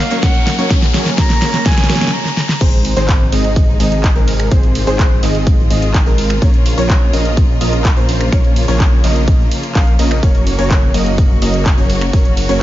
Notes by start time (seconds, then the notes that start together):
Already playing: F#3 A#3 D#4 A#4 F5, riser
0.11 F#3 A#3 C#4 A#4 C#5, closed hi-hat
0.23 A#3 C#4 A#4 F#5, kick, snare, closed hi-hat
0.35 closed hi-hat
0.47 snare, open hi-hat
0.59 F#3 A#3 C#4 A#4 C#5, closed hi-hat
0.70 C#4 G#4, kick, snare, closed hi-hat
0.82 snare, closed hi-hat
0.94 F#3 A#3 C#4 A#4 C#5, snare, open hi-hat
1.06 snare, closed hi-hat
1.18 F#3 A#3 C#4 A#4 C#5 A#5, kick, snare, closed hi-hat
1.30 snare, closed hi-hat
1.42 F#3 A#3 C#4 A#4 C#5, snare, open hi-hat
1.54 snare, closed hi-hat
1.66 F#3 A#3 C#4 A#4 C#5 G#5, kick, snare, closed hi-hat
1.72 snare
1.78 snare, closed hi-hat
1.84 snare
1.90 F#3 A#3 C#4 A#4 C#5, snare, open hi-hat
1.95 snare
2.01 snare, closed hi-hat
2.07 snare
2.13 A#5
2.25 snare
2.37 snare
2.49 snare
2.61 G#1 C3 D#3 G#3 C4 D#4 G#4 C5, kick, closed hi-hat, crash
2.73 closed hi-hat
2.85 open hi-hat, ride
2.97 G#1 D#3 G#3 C4 G#4 C5, closed hi-hat
3.09 kick, clap, closed hi-hat
3.32 G#1 D#3 G#3 C4 G#4 D#5, open hi-hat, ride
3.44 closed hi-hat
3.56 kick, closed hi-hat
3.80 G#1 D#3 G#3 C4 G#4 D#5, open hi-hat, ride
3.92 closed hi-hat
4.04 kick, clap, closed hi-hat
4.16 G#1 D#3 G#3 C4 G#4 A#4
4.28 open hi-hat, ride
4.40 finger snap, closed hi-hat
4.51 G#1 D#3 G#3 C4 F4 G#4 C5, kick, closed hi-hat
4.63 closed hi-hat
4.75 open hi-hat, ride
4.87 G#1 D#3 G#3 C4 G#4 C5, closed hi-hat
4.99 kick, clap, closed hi-hat
5.23 G#1 D#3 G#3 C4 G#4 D#5, clap, open hi-hat, ride
5.35 closed hi-hat
5.47 kick, closed hi-hat
5.70 G#1 D#3 G#3 C4 G#4 D#5, open hi-hat, ride
5.82 closed hi-hat
5.94 kick, clap, closed hi-hat
6.06 G#1 D#3 G#3 C4 G#4 A#4
6.18 open hi-hat, ride
6.30 finger snap, closed hi-hat
6.42 A#1 C#3 F3 A#3 C#4 A#4 C#5, kick, closed hi-hat
6.54 closed hi-hat
6.66 open hi-hat, ride
6.78 A#1 F3 A#3 C#4 A#4 C#5, closed hi-hat
6.90 kick, clap, closed hi-hat
7.13 A#1 F3 A#3 C#4 A#4 D#5, open hi-hat, ride
7.25 closed hi-hat
7.37 kick, closed hi-hat
7.61 A#1 F3 A#3 C#4 A#4 D#5, open hi-hat, ride
7.73 closed hi-hat
7.85 kick, clap, closed hi-hat
7.97 A#1 F3 A#3 C#4 A#4 C5
8.09 open hi-hat, ride
8.21 finger snap, closed hi-hat
8.32 A#1 F3 A#3 C#4 A#4 C#5, finger snap, kick, closed hi-hat
8.44 closed hi-hat
8.56 open hi-hat, ride
8.68 A#1 F3 A#3 C#4 A#4 C#5, closed hi-hat
8.80 kick, clap, closed hi-hat
9.04 A#1 F3 A#3 C#4 A#4 D#5, clap, open hi-hat, ride
9.16 closed hi-hat
9.28 kick, closed hi-hat
9.51 open hi-hat, ride
9.63 closed hi-hat
9.75 A#1 F3 A#3 C#4 A#4 F5, kick, clap, closed hi-hat
9.87 closed hi-hat
9.99 A#1 F3 A#3 C#4 A#4 D#5, open hi-hat, ride
10.11 finger snap, closed hi-hat
10.23 F#1 F#3 A#3 C#4 F#4 A#4 C#5, kick, closed hi-hat
10.35 closed hi-hat
10.47 open hi-hat, ride
10.59 F#1 F#3 A#3 C#4 A#4 C#5, closed hi-hat
10.71 kick, clap, closed hi-hat
10.94 F#1 F#3 A#3 C#4 A#4 D#5, open hi-hat, ride
11.06 closed hi-hat
11.18 kick, closed hi-hat
11.42 F#1 F#3 A#3 C#4 A#4 D#5, open hi-hat, ride
11.54 closed hi-hat
11.66 kick, clap, closed hi-hat
11.78 F#1 F#3 A#3 C#4 A#4 C#5
11.90 open hi-hat, ride
12.01 finger snap, closed hi-hat
12.13 F#1 F#3 A#3 C#4 A#4 C#5, kick, closed hi-hat
12.25 closed hi-hat
12.37 open hi-hat, ride
12.49 F#1 F#3 A#3 C#4 A#4 C#5, closed hi-hat